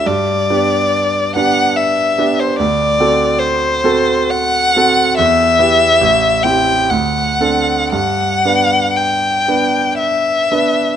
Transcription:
X:1
M:3/4
L:1/16
Q:1/4=68
K:G
V:1 name="Violin"
d6 f2 e3 c | d4 c4 f4 | e6 g2 f4 | f4 g4 e4 |]
V:2 name="Grand piano"
G,,2 [B,DG]4 [B,DG]4 [B,DG]2 | D,,2 [CFA]4 [CFA]4 [CFA]2 | E,,2 [B,EG]2 A,,,2 [CEG]2 D,,2 [CDA]2 | G,,2 [B,DB]4 [B,DB]4 [B,DB]2 |]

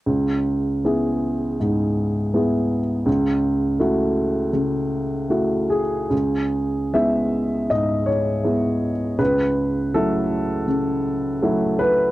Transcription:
X:1
M:4/4
L:1/8
Q:1/4=80
K:C#m
V:1 name="Upright piano"
z8 | z6 z G- | G2 e2 d c3 | B2 A4- A B |]
V:2 name="Upright piano"
C,,2 [B,EG]2 G,,2 [B,EG]2 | C,,2 [A,EF]2 C,2 [A,EF]2 | C,,2 [G,B,E]2 G,,2 [G,B,E]2 | C,,2 [F,A,E]2 C,2 [F,A,E]2 |]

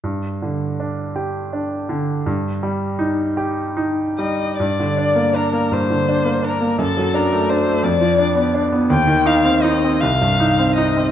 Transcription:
X:1
M:6/8
L:1/16
Q:3/8=55
K:Gm
V:1 name="Violin"
z12 | z8 z2 e2 | d4 B2 c4 B2 | A2 B2 c2 d4 z2 |
g2 f2 e2 f4 e2 |]
V:2 name="Grand piano"
G,,2 D,2 D2 G2 D2 D,2 | G,,2 G,2 E2 G2 E2 G,2 | G,, D, D B, D B, G,, D, D B, D B, | ^F,, ^F, D A, D A, =F,, =F, D =B, D B, |
E,, E, E C E C C,, G,, E C E C |]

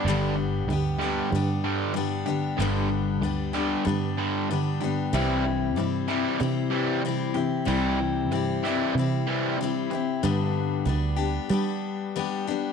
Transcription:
X:1
M:4/4
L:1/8
Q:1/4=94
K:G
V:1 name="Steel-string acoustic guitar"
[G,,D,G,B,DG]2 [G,B,DG] [G,B,DG] [G,B,DG]2 [G,B,DG] [G,B,DG] | [G,,D,G,B,DG]2 [G,B,DG] [G,B,DG] [G,B,DG]2 [G,B,DG] [G,B,DG] | [C,G,CEG]2 [G,CEG] [CEG] [G,CEG]2 [G,CEG] [CEG] | [C,G,CEG]2 [G,CEG] [CEG] [G,CEG]2 [G,CEG] [CEG] |
[G,,D,G,B,DG]2 [G,B,DG] [G,B,DG] [G,B,DG]2 [G,B,DG] [G,B,DG] |]
V:2 name="Overdriven electric guitar" clef=bass
[G,,D,G,] [G,,D,] [G,,D,] [G,,D,G,] [G,,D,] [G,,D,G,] [G,,D,] [G,,D,] | [G,,D,G,] [G,,D,] [G,,D,] [G,,D,G,] [G,,D,] [G,,D,G,] [G,,D,] [G,,D,] | [C,E,G,] [C,E,] [C,E,] [C,E,G,] [C,E,] [C,E,G,] [C,E,] [C,E,] | [C,E,G,] [C,E,] [C,E,] [C,E,G,] [C,E,] [C,E,G,] [C,E,] [C,E,] |
z8 |]
V:3 name="Fingered electric bass" clef=bass
G,,,2 D,,2 G,,4 | G,,,2 D,,2 G,,4 | C,,2 G,,2 C,4 | C,,2 G,,2 C,4 |
G,,2 D,,2 G,4 |]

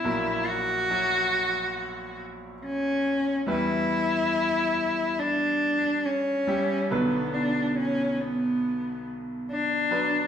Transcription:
X:1
M:4/4
L:1/8
Q:1/4=70
K:Edor
V:1 name="Cello"
E F4 z C2 | E4 D2 C2 | B, D C B,2 z D2 |]
V:2 name="Grand piano"
[F,E^A]2 [F,Ec]4 z2 | [G,EB]4 z3 [G,EG] | [D,F,B]4 z3 [F,DB] |]
V:3 name="Grand piano" clef=bass
[^A,,,^A,,]8 | [E,,E,]8 | [B,,,B,,]8 |]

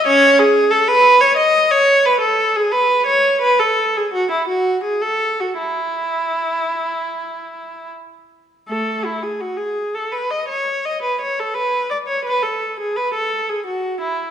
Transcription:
X:1
M:4/4
L:1/16
Q:1/4=85
K:E
V:1 name="Viola"
[Cc]2 G2 A B2 c d2 c2 B A2 G | B2 c2 B A2 G F E F2 G A2 F | E12 z4 | [K:A] [A,A]2 E G F G2 A B ^d c2 d B c A |
B2 d c B A2 G B A2 G F2 E2 |]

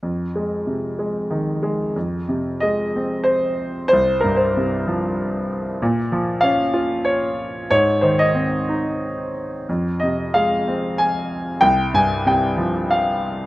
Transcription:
X:1
M:3/4
L:1/16
Q:1/4=94
K:Fm
V:1 name="Grand piano"
z12 | z4 e4 c4 | c2 B c6- c z2 | z4 f4 d4 |
d2 c e6- e z2 | z2 e2 f4 a4 | g2 a2 g4 f3 z |]
V:2 name="Grand piano" clef=bass
F,,2 A,2 C,2 A,2 E,2 A,2 | F,,2 C,2 A,2 C6 | C,,2 G,,2 C,2 F,6 | B,,2 F,2 D2 F6 |
A,,2 E,2 C2 E6 | F,,2 C,2 A,2 C6 | C,,2 G,,2 C,2 F,6 |]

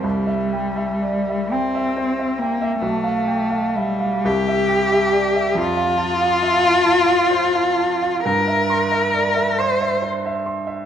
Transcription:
X:1
M:6/8
L:1/16
Q:3/8=45
K:Cmix
V:1 name="Grand piano"
C,, e g e d e g e c e g e | =B,,, f g f e f C,, e g e d e | F,, f a f e f a f c f a f | G,, e c' e d e c' e c e c' e |]
V:2 name="Cello"
G,6 C4 B,2 | A,4 G,2 G6 | F12 | B6 c2 z4 |]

